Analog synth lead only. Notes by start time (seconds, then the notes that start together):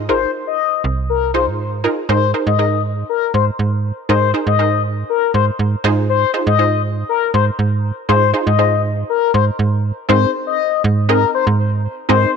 0.09 C5
0.47 D#5
1.10 A#4
1.35 C5
2.09 C5
2.47 D#5
3.09 A#4
3.34 C5
4.09 C5
4.47 D#5
5.10 A#4
5.34 C5
6.09 C5
6.47 D#5
7.09 A#4
7.34 C5
8.09 C5
8.47 D#5
9.10 A#4
9.34 C5
10.09 C5
10.47 D#5
11.09 A#4
11.35 C5
12.09 C5